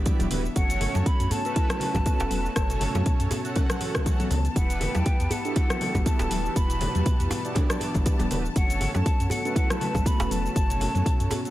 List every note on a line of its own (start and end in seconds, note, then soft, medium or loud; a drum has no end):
0.00 0.52 E3 medium
0.00 0.52 G3 medium
0.00 0.28 B3 medium
0.00 0.52 B3 medium
0.00 0.28 E4 medium
0.00 0.28 F#4 medium
0.00 0.28 G4 medium
0.00 0.28 D5 medium
0.00 0.52 E5 loud
0.06 0.19 E3 loud
0.06 kick loud
0.06 closed hi-hat medium
0.06 high conga medium
0.06 shaker medium
0.19 0.27 D1 medium
0.19 0.30 B3 loud
0.19 closed hi-hat soft
0.19 djembe tone medium
0.19 high conga loud
0.19 shaker medium
0.31 0.48 D1 loud
0.31 0.44 B3 loud
0.31 0.43 B3 medium
0.31 0.43 E4 medium
0.31 0.43 F#4 medium
0.31 0.43 G4 medium
0.31 0.43 B4 loud
0.31 open hi-hat medium
0.31 low conga medium
0.31 shaker loud
0.45 shaker soft
0.56 0.88 F#1 loud
0.56 4.52 C#3 medium
0.56 0.69 E3 loud
0.56 4.52 F#3 medium
0.56 4.52 A3 medium
0.56 1.42 A3 medium
0.56 1.42 C#4 medium
0.56 1.42 F#4 medium
0.56 1.42 A4 medium
0.56 1.42 C#5 medium
0.56 0.97 F#5 loud
0.56 11.50 A5 loud
0.56 kick loud
0.56 closed hi-hat medium
0.56 shaker medium
0.70 closed hi-hat soft
0.70 shaker medium
0.81 0.89 A3 medium
0.81 open hi-hat medium
0.81 djembe tone medium
0.81 low conga medium
0.81 shaker soft
0.94 1.02 F#2 medium
0.94 1.08 A5 loud
0.94 closed hi-hat soft
0.94 djembe slap medium
0.94 high conga medium
0.94 shaker medium
1.06 1.33 B5 loud
1.06 kick loud
1.06 closed hi-hat medium
1.06 shaker medium
1.20 1.27 F#2 loud
1.20 closed hi-hat soft
1.20 shaker soft
1.31 1.44 B3 loud
1.31 4.06 A5 loud
1.31 open hi-hat medium
1.31 djembe tone medium
1.31 djembe bass medium
1.31 shaker medium
1.45 2.53 A3 loud
1.45 1.51 C#4 medium
1.45 2.53 C#4 medium
1.45 2.53 F#4 medium
1.45 2.53 A4 medium
1.45 2.53 B4 loud
1.45 closed hi-hat soft
1.45 shaker medium
1.56 1.69 E4 medium
1.56 kick loud
1.56 closed hi-hat medium
1.56 shaker soft
1.70 cross-stick medium
1.70 closed hi-hat soft
1.70 high conga loud
1.70 shaker medium
1.80 1.88 A3 medium
1.80 open hi-hat medium
1.80 high conga medium
1.80 low conga loud
1.80 shaker soft
1.94 2.02 A1 medium
1.94 2.05 B3 medium
1.94 kick medium
1.94 closed hi-hat soft
1.94 djembe slap medium
1.94 high conga loud
1.94 djembe tone medium
1.94 djembe bass loud
1.94 shaker medium
2.06 2.19 B3 medium
2.06 kick loud
2.06 closed hi-hat medium
2.06 shaker medium
2.20 2.27 E1 medium
2.20 closed hi-hat soft
2.20 djembe slap loud
2.20 djembe tone medium
2.20 shaker medium
2.31 2.48 E1 medium
2.31 2.44 B3 loud
2.31 open hi-hat loud
2.31 high conga medium
2.31 shaker loud
2.46 shaker soft
2.56 2.87 F#1 loud
2.56 3.42 A3 medium
2.56 3.42 C#4 medium
2.56 3.42 F#4 medium
2.56 3.42 A4 medium
2.56 3.42 C#5 medium
2.56 kick loud
2.56 cross-stick medium
2.56 closed hi-hat medium
2.56 shaker medium
2.69 2.80 B2 loud
2.69 closed hi-hat soft
2.69 shaker medium
2.81 2.88 A3 medium
2.81 open hi-hat medium
2.81 djembe tone medium
2.81 low conga medium
2.81 shaker medium
2.95 3.02 F#2 loud
2.95 3.05 B3 medium
2.95 closed hi-hat soft
2.95 djembe slap medium
2.95 high conga loud
2.95 shaker soft
3.06 3.18 B2 loud
3.06 kick loud
3.06 closed hi-hat medium
3.06 shaker soft
3.20 3.27 F#2 loud
3.20 closed hi-hat soft
3.20 shaker medium
3.31 3.44 B3 loud
3.31 open hi-hat loud
3.31 djembe slap medium
3.31 djembe tone medium
3.31 djembe bass loud
3.31 shaker medium
3.45 4.28 A3 medium
3.45 4.28 C#4 medium
3.45 4.28 F#4 medium
3.45 4.28 A4 medium
3.45 4.28 F#5 medium
3.45 closed hi-hat soft
3.45 shaker medium
3.56 3.69 C#4 loud
3.56 kick loud
3.56 closed hi-hat medium
3.56 djembe tone medium
3.56 low conga loud
3.56 shaker medium
3.70 cross-stick medium
3.70 closed hi-hat soft
3.70 high conga loud
3.70 shaker medium
3.80 3.88 E3 loud
3.80 open hi-hat medium
3.80 djembe tone medium
3.80 shaker medium
3.95 4.01 F#3 medium
3.95 kick medium
3.95 cross-stick medium
3.95 closed hi-hat soft
3.95 high conga medium
3.95 low conga medium
3.95 shaker medium
4.06 4.18 E3 loud
4.06 kick loud
4.06 closed hi-hat medium
4.06 high conga medium
4.06 shaker loud
4.20 4.29 B3 loud
4.20 closed hi-hat soft
4.20 djembe tone medium
4.20 high conga loud
4.20 shaker soft
4.30 4.48 C#2 medium
4.30 4.44 B3 loud
4.30 open hi-hat loud
4.30 low conga loud
4.30 shaker loud
4.45 closed hi-hat soft
4.45 shaker medium
4.55 4.87 E1 loud
4.55 4.68 E3 loud
4.55 8.52 E3 medium
4.55 8.52 G3 medium
4.55 8.52 B3 medium
4.55 5.42 B3 medium
4.55 5.42 E4 medium
4.55 5.42 G4 medium
4.55 5.42 B4 loud
4.55 4.97 F#5 medium
4.55 kick loud
4.55 closed hi-hat medium
4.55 shaker medium
4.70 closed hi-hat soft
4.70 shaker medium
4.81 4.88 A3 medium
4.81 open hi-hat loud
4.81 djembe tone medium
4.81 low conga medium
4.81 shaker medium
4.95 5.02 E2 loud
4.95 5.33 G5 loud
4.95 closed hi-hat soft
4.95 djembe slap medium
4.95 high conga medium
4.95 shaker medium
5.06 kick loud
5.06 closed hi-hat medium
5.06 shaker medium
5.20 5.27 E2 loud
5.20 closed hi-hat soft
5.20 shaker medium
5.30 5.44 B3 loud
5.30 5.56 F#5 medium
5.30 open hi-hat medium
5.30 djembe tone medium
5.30 djembe bass loud
5.30 shaker medium
5.45 6.53 B3 medium
5.45 5.51 D4 medium
5.45 6.53 E4 medium
5.45 6.53 F#4 medium
5.45 6.53 G4 medium
5.45 6.53 A4 loud
5.45 closed hi-hat soft
5.45 shaker medium
5.56 6.03 F#5 loud
5.56 kick loud
5.56 closed hi-hat medium
5.56 shaker medium
5.70 cross-stick medium
5.70 closed hi-hat soft
5.70 high conga loud
5.70 shaker medium
5.81 5.88 A3 medium
5.81 open hi-hat loud
5.81 high conga medium
5.81 low conga loud
5.81 shaker medium
5.95 6.02 G1 medium
5.95 6.04 B3 medium
5.95 kick medium
5.95 closed hi-hat soft
5.95 djembe slap medium
5.95 djembe tone medium
5.95 high conga loud
5.95 djembe bass loud
5.95 shaker medium
6.05 6.19 B3 medium
6.05 6.58 A5 loud
6.05 kick loud
6.05 closed hi-hat medium
6.05 shaker loud
6.19 6.27 D1 medium
6.19 closed hi-hat soft
6.19 djembe slap loud
6.19 djembe tone loud
6.19 shaker medium
6.31 6.49 D1 medium
6.31 6.44 B3 loud
6.31 open hi-hat loud
6.31 high conga medium
6.31 shaker loud
6.46 shaker medium
6.56 6.87 E1 loud
6.56 7.42 B3 medium
6.56 7.42 E4 medium
6.56 7.42 F#4 medium
6.56 7.42 G4 medium
6.56 7.42 B4 medium
6.56 7.56 B5 loud
6.56 kick loud
6.56 closed hi-hat medium
6.56 shaker medium
6.70 6.80 B2 loud
6.70 closed hi-hat soft
6.70 shaker loud
6.81 6.88 A3 medium
6.81 open hi-hat medium
6.81 djembe tone loud
6.81 low conga medium
6.81 shaker medium
6.95 7.02 E2 loud
6.95 7.05 B3 medium
6.95 closed hi-hat soft
6.95 high conga medium
6.95 shaker medium
7.05 7.18 B2 loud
7.05 kick loud
7.05 closed hi-hat medium
7.05 shaker medium
7.20 7.27 E2 medium
7.20 closed hi-hat soft
7.20 shaker medium
7.31 7.44 B3 loud
7.31 open hi-hat medium
7.31 djembe slap medium
7.31 djembe tone medium
7.31 djembe bass loud
7.31 shaker loud
7.45 8.28 B3 medium
7.45 8.28 E4 medium
7.45 8.28 F#4 medium
7.45 8.28 G4 medium
7.45 8.28 D5 medium
7.45 closed hi-hat soft
7.45 shaker medium
7.55 7.69 D4 loud
7.55 kick loud
7.55 closed hi-hat medium
7.55 djembe tone loud
7.55 low conga loud
7.55 shaker medium
7.70 cross-stick medium
7.70 closed hi-hat soft
7.70 high conga loud
7.70 shaker medium
7.80 7.88 E3 loud
7.80 open hi-hat medium
7.80 djembe tone medium
7.80 shaker medium
7.94 8.02 G1 medium
7.94 8.01 G3 medium
7.94 kick medium
7.94 closed hi-hat soft
7.94 high conga loud
7.94 low conga loud
7.94 shaker medium
8.06 8.18 E3 loud
8.06 kick loud
8.06 closed hi-hat medium
8.06 high conga medium
8.06 shaker loud
8.19 8.27 D1 medium
8.19 8.29 B3 loud
8.19 closed hi-hat soft
8.19 high conga loud
8.19 djembe tone loud
8.19 shaker medium
8.31 8.49 D1 medium
8.31 8.44 B3 loud
8.31 8.43 B3 medium
8.31 8.43 E4 medium
8.31 8.43 F#4 medium
8.31 8.43 G4 medium
8.31 8.43 B4 loud
8.31 open hi-hat loud
8.31 low conga medium
8.31 shaker loud
8.45 shaker medium
8.56 8.87 F#1 loud
8.56 11.50 C#3 medium
8.56 8.68 E3 loud
8.56 11.50 F#3 medium
8.56 9.41 A3 medium
8.56 11.50 A3 medium
8.56 9.42 C#4 medium
8.56 9.42 F#4 medium
8.56 9.41 A4 medium
8.56 9.42 C#5 loud
8.56 8.92 F#5 loud
8.56 kick loud
8.56 closed hi-hat medium
8.56 shaker medium
8.70 closed hi-hat soft
8.70 shaker loud
8.81 8.88 A3 medium
8.81 open hi-hat medium
8.81 djembe tone loud
8.81 low conga medium
8.81 shaker medium
8.95 9.02 F#2 medium
8.95 9.32 A5 loud
8.95 closed hi-hat soft
8.95 djembe slap medium
8.95 high conga medium
8.95 shaker medium
9.06 kick loud
9.06 closed hi-hat medium
9.06 shaker medium
9.20 9.27 F#2 medium
9.20 closed hi-hat soft
9.20 shaker medium
9.30 9.44 B3 loud
9.30 9.55 F#5 medium
9.30 open hi-hat medium
9.30 djembe tone medium
9.30 djembe bass loud
9.30 shaker loud
9.45 10.53 A3 loud
9.45 9.51 C#4 medium
9.45 10.53 C#4 medium
9.45 10.53 F#4 medium
9.45 10.53 A4 medium
9.45 10.53 B4 loud
9.45 closed hi-hat soft
9.45 shaker medium
9.56 9.68 E4 medium
9.56 9.72 F#5 loud
9.56 kick loud
9.56 closed hi-hat medium
9.56 shaker medium
9.70 10.08 A5 loud
9.70 cross-stick medium
9.70 closed hi-hat soft
9.70 high conga loud
9.70 shaker medium
9.81 9.88 A3 medium
9.81 open hi-hat medium
9.81 high conga loud
9.81 low conga loud
9.81 shaker medium
9.94 10.02 A1 medium
9.94 kick medium
9.94 closed hi-hat soft
9.94 djembe slap medium
9.94 high conga loud
9.94 djembe tone loud
9.94 djembe bass medium
9.94 shaker medium
10.06 10.19 B3 medium
10.06 10.33 B5 loud
10.06 kick loud
10.06 closed hi-hat medium
10.06 shaker loud
10.20 10.27 E1 medium
10.20 closed hi-hat soft
10.20 djembe slap loud
10.20 djembe tone medium
10.20 shaker medium
10.31 10.48 E1 loud
10.31 10.44 B3 loud
10.31 11.50 A5 loud
10.31 open hi-hat medium
10.31 high conga medium
10.31 shaker loud
10.46 shaker medium
10.56 10.87 F#1 loud
10.56 11.42 A3 medium
10.56 11.42 C#4 medium
10.56 11.42 F#4 medium
10.56 11.42 A4 medium
10.56 11.42 C#5 medium
10.56 kick loud
10.56 closed hi-hat medium
10.56 shaker medium
10.70 10.80 B2 loud
10.70 closed hi-hat soft
10.70 shaker loud
10.80 10.88 A3 medium
10.80 open hi-hat medium
10.80 djembe tone medium
10.80 low conga medium
10.80 shaker medium
10.95 11.02 F#2 medium
10.95 11.05 B3 medium
10.95 closed hi-hat soft
10.95 high conga medium
10.95 shaker medium
11.06 11.19 B2 loud
11.06 kick loud
11.06 closed hi-hat medium
11.06 shaker medium
11.20 11.27 F#2 loud
11.20 closed hi-hat soft
11.20 shaker medium
11.31 11.44 B3 loud
11.31 open hi-hat medium
11.31 djembe slap medium
11.31 djembe tone medium
11.31 djembe bass loud
11.31 shaker loud
11.45 11.50 A3 medium
11.45 11.50 C#4 medium
11.45 11.50 F#4 medium
11.45 11.50 A4 medium
11.45 11.50 F#5 medium
11.45 closed hi-hat soft
11.45 shaker medium